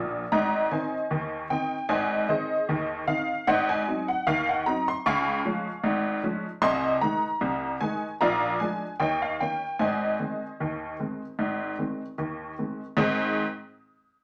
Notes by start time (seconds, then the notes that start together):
Already playing: A#1 A#2
0.32 G#1 G#2 D#5 A#5
0.71 D#3 C4 D#4 C5 D#5 G#5
1.11 D#2 D#3
1.50 D#3 C4 D#4 G5
1.89 G#1 G#2 C5 D#5 G#5
2.29 D#3 C4 D#4 G#4 C5 D#5
2.69 D#2 D#3
3.07 D#3 C4 D#4 F5
3.47 G#1 G#2 C5 D#5 F#5
3.69 G#5
3.87 F#3 C4 D#4
4.08 F#5
4.27 D#2 D#3 F5
4.49 F#5
4.66 F#3 C4 D#4 A#5
4.88 C6
5.06 C#2 C#3 F5 G#5 C#6
5.45 F3 G#3 C#4
5.84 G#1 G#2
6.23 F3 G#3 C#4
6.62 C2 C3 D#5 G#5 C6
7.01 D#3 G#3 D#4 A#5
7.41 C2 C3
7.81 D#3 G#3 D#4 G#5
8.21 A#1 A#2 D5 F5 A#5
8.60 F3 G#3 D4 G#5
9.00 D#2 D#3 C#5 D#5 G5
9.22 F5
9.40 D#3 A#3 C#4 G5
9.79 G#1 G#2 C5 D#5 G#5
10.19 D#3 G#3 C4
10.60 D#2 D#3
11.00 D#3 G#3 C4
11.39 G#1 G#2
11.79 D#3 G#3 C4
12.18 D#2 D#3
12.59 D#3 G#3 C4
12.97 G#2 D#3 C4 D#4 G#4 C5